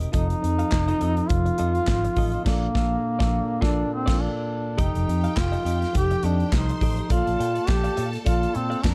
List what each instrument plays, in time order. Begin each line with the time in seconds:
Already playing: tine electric piano C3 C4 D#4 A#4
0.00 clean electric guitar G4 A#4 D#5, closed hi-hat
0.12 fingered electric bass F1, tine electric piano F3 C4 D#4 A4, duduk D#4, clean electric guitar F4 A4 D#5, kick, closed hi-hat
0.30 muted clean electric guitar stroke, closed hi-hat
0.42 fingered electric bass F2, tine electric piano F3 C4 D#4 G#4, muted clean electric guitar stroke, closed hi-hat
0.50 tine electric piano A4
0.59 clean electric guitar F4 A4 F5, closed hi-hat
0.72 fingered electric bass F1, kick, snare, clap
0.88 clean electric guitar F4 A4 D#5, closed hi-hat
1.00 fingered electric bass F2, tine electric piano F3 C4 D#4 A4, clean electric guitar F4 A4 D#5, closed hi-hat
1.17 closed hi-hat
1.29 fingered electric bass F1, duduk F4, kick, closed hi-hat
1.46 muted clean electric guitar stroke, closed hi-hat
1.58 fingered electric bass F2, clean electric guitar F4 A4 D#5, closed hi-hat
1.75 closed hi-hat
1.87 fingered electric bass G#1, muted clean electric guitar stroke, kick, snare, clap
2.04 muted clean electric guitar stroke, closed hi-hat
2.16 fingered electric bass A1, clean electric guitar F4 A4 D#5, kick, open hi-hat
2.32 clean electric guitar F4 A4 D#5, closed hi-hat
2.44 fingered electric bass A#1, tine electric piano A#2 A#3 D4 A4, duduk A#3, clean electric guitar F4 A4 D5, kick, snare, crash
2.73 fingered electric bass A#1, tine electric piano A#2 A#3 D4 A4, clean electric guitar F4 A4 F5, kick, snare
3.19 fingered electric bass A#1, tine electric piano A#2 A#3 A4, clean electric guitar F4 A4 D5, kick, snare
3.27 tine electric piano D4
3.61 fingered electric bass A#1, tine electric piano A#2 A#3 A4, duduk D4, clean electric guitar F4 A4 D5, kick, snare
3.68 tine electric piano D4
3.94 duduk C4
4.06 fingered electric bass A#1, tine electric piano A#2 A#3 A4, clean electric guitar F4 A4 D5, kick, snare, crash
4.14 tine electric piano D4
4.22 duduk D4
4.77 fingered electric bass F1, tine electric piano F3 D#4 G4 A4, duduk D#4, clean electric guitar G4 A4 D#5, string section G4 G5, kick, closed hi-hat
4.95 fingered electric bass F1, muted clean electric guitar stroke, closed hi-hat
5.07 fingered electric bass F2, muted clean electric guitar stroke, closed hi-hat
5.24 clean electric guitar G4 A4 F5, closed hi-hat
5.36 fingered electric bass F1, duduk F4, muted clean electric guitar stroke, kick, snare, clap
5.52 clean electric guitar G4 A4 D#5, closed hi-hat
5.64 fingered electric bass F2, clean electric guitar G4 A4 D#5, closed hi-hat
5.82 muted clean electric guitar stroke, snare, closed hi-hat
5.93 fingered electric bass F1, tine electric piano F3 D#4 G4 A4, kick, closed hi-hat
5.97 duduk G4
6.11 muted clean electric guitar stroke, closed hi-hat
6.23 fingered electric bass F2, duduk D4, clean electric guitar G4 A4 D#5, closed hi-hat
6.40 muted clean electric guitar stroke, closed hi-hat
6.52 fingered electric bass C2, duduk D#4, string section C5 C6, muted clean electric guitar stroke, kick, snare, clap
6.69 muted clean electric guitar stroke, closed hi-hat
6.81 fingered electric bass A1, clean electric guitar G4 A4 D#5, kick, open hi-hat
6.97 clean electric guitar G4 A4 D#5, closed hi-hat
7.09 fingered electric bass A#1, tine electric piano A#3 F4 A4 C#5, duduk F4, clean electric guitar A4 D5 F5, string section A4 A5, kick, closed hi-hat
7.17 tine electric piano D5
7.27 fingered electric bass A#1, closed hi-hat
7.39 fingered electric bass A#2, clean electric guitar A4 D5 G5, closed hi-hat
7.55 clean electric guitar A4 D5 F5, closed hi-hat
7.68 fingered electric bass A#1, duduk G4, kick, snare, clap
7.84 clean electric guitar A4 D5 F5, closed hi-hat
7.96 fingered electric bass A#2, clean electric guitar A4 D5 F5, closed hi-hat
8.12 muted clean electric guitar stroke, snare, closed hi-hat
8.25 fingered electric bass A#1, tine electric piano A#3 F4 A4 D5, duduk F4, clean electric guitar A4 D5 F5, kick, closed hi-hat
8.41 muted clean electric guitar stroke, closed hi-hat
8.53 fingered electric bass A#2, duduk C4, muted clean electric guitar stroke, closed hi-hat
8.70 clean electric guitar A4 D5 F5, closed hi-hat
8.84 fingered electric bass F2, duduk D4, string section A#4 A#5, kick, snare, clap